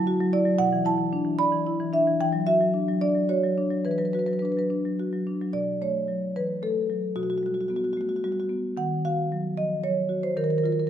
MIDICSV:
0, 0, Header, 1, 2, 480
1, 0, Start_track
1, 0, Key_signature, 2, "minor"
1, 0, Tempo, 533808
1, 539, Time_signature, 6, 3, 24, 8
1, 2464, Tempo, 557621
1, 5344, Tempo, 534759
1, 9664, End_track
2, 0, Start_track
2, 0, Title_t, "Marimba"
2, 0, Program_c, 0, 12
2, 0, Note_on_c, 0, 50, 90
2, 0, Note_on_c, 0, 54, 67
2, 0, Note_on_c, 0, 81, 127
2, 64, Note_on_c, 0, 66, 80
2, 143, Note_off_c, 0, 54, 0
2, 183, Note_on_c, 0, 54, 72
2, 254, Note_off_c, 0, 66, 0
2, 294, Note_off_c, 0, 81, 0
2, 298, Note_on_c, 0, 74, 112
2, 299, Note_on_c, 0, 64, 71
2, 373, Note_off_c, 0, 54, 0
2, 409, Note_on_c, 0, 54, 70
2, 490, Note_off_c, 0, 64, 0
2, 518, Note_off_c, 0, 50, 0
2, 526, Note_on_c, 0, 78, 118
2, 528, Note_off_c, 0, 74, 0
2, 533, Note_off_c, 0, 54, 0
2, 533, Note_on_c, 0, 47, 87
2, 652, Note_on_c, 0, 52, 68
2, 761, Note_off_c, 0, 78, 0
2, 767, Note_on_c, 0, 64, 73
2, 773, Note_on_c, 0, 81, 117
2, 846, Note_off_c, 0, 52, 0
2, 880, Note_on_c, 0, 52, 62
2, 963, Note_off_c, 0, 64, 0
2, 1013, Note_on_c, 0, 62, 73
2, 1079, Note_off_c, 0, 52, 0
2, 1119, Note_on_c, 0, 52, 63
2, 1206, Note_off_c, 0, 62, 0
2, 1233, Note_off_c, 0, 81, 0
2, 1246, Note_on_c, 0, 83, 122
2, 1248, Note_on_c, 0, 74, 77
2, 1319, Note_off_c, 0, 52, 0
2, 1368, Note_on_c, 0, 52, 63
2, 1443, Note_off_c, 0, 74, 0
2, 1498, Note_on_c, 0, 64, 72
2, 1563, Note_off_c, 0, 52, 0
2, 1618, Note_on_c, 0, 52, 67
2, 1688, Note_off_c, 0, 64, 0
2, 1711, Note_off_c, 0, 83, 0
2, 1733, Note_on_c, 0, 62, 65
2, 1740, Note_on_c, 0, 76, 103
2, 1808, Note_off_c, 0, 52, 0
2, 1862, Note_on_c, 0, 52, 61
2, 1926, Note_off_c, 0, 62, 0
2, 1937, Note_off_c, 0, 47, 0
2, 1968, Note_off_c, 0, 76, 0
2, 1972, Note_off_c, 0, 52, 0
2, 1982, Note_on_c, 0, 52, 80
2, 1984, Note_on_c, 0, 79, 111
2, 2089, Note_on_c, 0, 54, 64
2, 2213, Note_off_c, 0, 79, 0
2, 2217, Note_on_c, 0, 76, 105
2, 2220, Note_on_c, 0, 66, 66
2, 2289, Note_off_c, 0, 54, 0
2, 2346, Note_on_c, 0, 54, 58
2, 2415, Note_off_c, 0, 66, 0
2, 2463, Note_on_c, 0, 62, 62
2, 2537, Note_off_c, 0, 54, 0
2, 2585, Note_on_c, 0, 54, 61
2, 2652, Note_off_c, 0, 62, 0
2, 2680, Note_off_c, 0, 76, 0
2, 2699, Note_on_c, 0, 74, 100
2, 2702, Note_on_c, 0, 62, 65
2, 2773, Note_off_c, 0, 54, 0
2, 2817, Note_on_c, 0, 54, 53
2, 2891, Note_off_c, 0, 62, 0
2, 2928, Note_off_c, 0, 74, 0
2, 2937, Note_on_c, 0, 66, 62
2, 2939, Note_on_c, 0, 73, 96
2, 3009, Note_off_c, 0, 54, 0
2, 3064, Note_on_c, 0, 54, 55
2, 3130, Note_off_c, 0, 66, 0
2, 3183, Note_on_c, 0, 62, 59
2, 3255, Note_off_c, 0, 54, 0
2, 3297, Note_on_c, 0, 54, 54
2, 3375, Note_off_c, 0, 62, 0
2, 3391, Note_off_c, 0, 52, 0
2, 3403, Note_off_c, 0, 73, 0
2, 3417, Note_on_c, 0, 71, 78
2, 3420, Note_off_c, 0, 54, 0
2, 3424, Note_on_c, 0, 52, 66
2, 3473, Note_off_c, 0, 71, 0
2, 3473, Note_on_c, 0, 71, 64
2, 3531, Note_off_c, 0, 71, 0
2, 3531, Note_on_c, 0, 71, 69
2, 3536, Note_on_c, 0, 54, 54
2, 3593, Note_off_c, 0, 71, 0
2, 3593, Note_on_c, 0, 71, 59
2, 3662, Note_off_c, 0, 71, 0
2, 3662, Note_on_c, 0, 71, 69
2, 3674, Note_on_c, 0, 66, 55
2, 3714, Note_off_c, 0, 71, 0
2, 3714, Note_on_c, 0, 71, 66
2, 3735, Note_off_c, 0, 54, 0
2, 3776, Note_off_c, 0, 71, 0
2, 3776, Note_on_c, 0, 71, 70
2, 3787, Note_on_c, 0, 54, 50
2, 3833, Note_off_c, 0, 71, 0
2, 3833, Note_on_c, 0, 71, 60
2, 3865, Note_off_c, 0, 66, 0
2, 3886, Note_off_c, 0, 71, 0
2, 3886, Note_on_c, 0, 71, 70
2, 3912, Note_on_c, 0, 62, 57
2, 3936, Note_off_c, 0, 71, 0
2, 3936, Note_on_c, 0, 71, 60
2, 3983, Note_off_c, 0, 54, 0
2, 3996, Note_off_c, 0, 71, 0
2, 3996, Note_on_c, 0, 71, 64
2, 4041, Note_on_c, 0, 54, 50
2, 4053, Note_off_c, 0, 71, 0
2, 4053, Note_on_c, 0, 71, 66
2, 4106, Note_off_c, 0, 62, 0
2, 4121, Note_off_c, 0, 71, 0
2, 4153, Note_on_c, 0, 62, 59
2, 4231, Note_off_c, 0, 54, 0
2, 4283, Note_on_c, 0, 54, 51
2, 4347, Note_off_c, 0, 62, 0
2, 4404, Note_on_c, 0, 66, 55
2, 4473, Note_off_c, 0, 54, 0
2, 4521, Note_on_c, 0, 54, 50
2, 4594, Note_off_c, 0, 66, 0
2, 4640, Note_on_c, 0, 62, 50
2, 4712, Note_off_c, 0, 54, 0
2, 4765, Note_on_c, 0, 54, 50
2, 4829, Note_off_c, 0, 62, 0
2, 4842, Note_off_c, 0, 52, 0
2, 4868, Note_on_c, 0, 74, 86
2, 4873, Note_on_c, 0, 47, 63
2, 4879, Note_off_c, 0, 54, 0
2, 5096, Note_off_c, 0, 74, 0
2, 5112, Note_on_c, 0, 57, 51
2, 5114, Note_on_c, 0, 73, 81
2, 5338, Note_on_c, 0, 54, 50
2, 5490, Note_off_c, 0, 57, 0
2, 5569, Note_off_c, 0, 73, 0
2, 5591, Note_on_c, 0, 71, 84
2, 5592, Note_on_c, 0, 52, 47
2, 5728, Note_off_c, 0, 54, 0
2, 5821, Note_off_c, 0, 71, 0
2, 5829, Note_on_c, 0, 57, 50
2, 5831, Note_off_c, 0, 52, 0
2, 5831, Note_on_c, 0, 69, 78
2, 6071, Note_on_c, 0, 54, 50
2, 6215, Note_off_c, 0, 57, 0
2, 6274, Note_off_c, 0, 47, 0
2, 6293, Note_off_c, 0, 69, 0
2, 6306, Note_on_c, 0, 66, 76
2, 6308, Note_on_c, 0, 47, 64
2, 6312, Note_off_c, 0, 54, 0
2, 6371, Note_off_c, 0, 66, 0
2, 6371, Note_on_c, 0, 66, 58
2, 6433, Note_off_c, 0, 66, 0
2, 6433, Note_on_c, 0, 66, 68
2, 6504, Note_off_c, 0, 66, 0
2, 6504, Note_on_c, 0, 66, 60
2, 6550, Note_on_c, 0, 55, 46
2, 6579, Note_off_c, 0, 66, 0
2, 6579, Note_on_c, 0, 66, 62
2, 6651, Note_off_c, 0, 66, 0
2, 6651, Note_on_c, 0, 66, 62
2, 6708, Note_off_c, 0, 66, 0
2, 6708, Note_on_c, 0, 66, 64
2, 6778, Note_off_c, 0, 66, 0
2, 6778, Note_on_c, 0, 66, 62
2, 6792, Note_on_c, 0, 59, 50
2, 6849, Note_off_c, 0, 66, 0
2, 6849, Note_on_c, 0, 66, 69
2, 6921, Note_off_c, 0, 66, 0
2, 6921, Note_on_c, 0, 66, 60
2, 6937, Note_off_c, 0, 55, 0
2, 7001, Note_off_c, 0, 66, 0
2, 7001, Note_on_c, 0, 66, 64
2, 7036, Note_on_c, 0, 57, 46
2, 7070, Note_off_c, 0, 66, 0
2, 7070, Note_on_c, 0, 66, 62
2, 7141, Note_off_c, 0, 66, 0
2, 7141, Note_on_c, 0, 66, 63
2, 7178, Note_off_c, 0, 59, 0
2, 7208, Note_off_c, 0, 66, 0
2, 7208, Note_on_c, 0, 66, 60
2, 7276, Note_off_c, 0, 57, 0
2, 7277, Note_on_c, 0, 55, 52
2, 7279, Note_off_c, 0, 66, 0
2, 7279, Note_on_c, 0, 66, 68
2, 7351, Note_off_c, 0, 66, 0
2, 7351, Note_on_c, 0, 66, 59
2, 7419, Note_off_c, 0, 66, 0
2, 7419, Note_on_c, 0, 66, 65
2, 7478, Note_off_c, 0, 66, 0
2, 7507, Note_on_c, 0, 59, 51
2, 7660, Note_off_c, 0, 55, 0
2, 7717, Note_off_c, 0, 47, 0
2, 7750, Note_off_c, 0, 59, 0
2, 7750, Note_on_c, 0, 51, 66
2, 7757, Note_on_c, 0, 78, 89
2, 7983, Note_off_c, 0, 78, 0
2, 8004, Note_on_c, 0, 77, 85
2, 8006, Note_on_c, 0, 66, 54
2, 8248, Note_on_c, 0, 54, 53
2, 8381, Note_off_c, 0, 66, 0
2, 8457, Note_off_c, 0, 77, 0
2, 8475, Note_on_c, 0, 75, 90
2, 8479, Note_on_c, 0, 53, 48
2, 8622, Note_off_c, 0, 54, 0
2, 8703, Note_off_c, 0, 75, 0
2, 8710, Note_on_c, 0, 54, 52
2, 8710, Note_on_c, 0, 73, 87
2, 8714, Note_off_c, 0, 53, 0
2, 8938, Note_on_c, 0, 66, 53
2, 9054, Note_off_c, 0, 73, 0
2, 9067, Note_on_c, 0, 72, 77
2, 9092, Note_off_c, 0, 54, 0
2, 9150, Note_off_c, 0, 51, 0
2, 9182, Note_off_c, 0, 66, 0
2, 9185, Note_on_c, 0, 51, 70
2, 9187, Note_off_c, 0, 72, 0
2, 9190, Note_on_c, 0, 70, 84
2, 9251, Note_off_c, 0, 70, 0
2, 9251, Note_on_c, 0, 70, 70
2, 9310, Note_off_c, 0, 70, 0
2, 9310, Note_on_c, 0, 70, 69
2, 9378, Note_off_c, 0, 70, 0
2, 9378, Note_on_c, 0, 70, 68
2, 9428, Note_on_c, 0, 65, 53
2, 9445, Note_off_c, 0, 70, 0
2, 9445, Note_on_c, 0, 70, 75
2, 9507, Note_off_c, 0, 70, 0
2, 9507, Note_on_c, 0, 70, 63
2, 9572, Note_off_c, 0, 70, 0
2, 9572, Note_on_c, 0, 70, 70
2, 9664, Note_off_c, 0, 51, 0
2, 9664, Note_off_c, 0, 65, 0
2, 9664, Note_off_c, 0, 70, 0
2, 9664, End_track
0, 0, End_of_file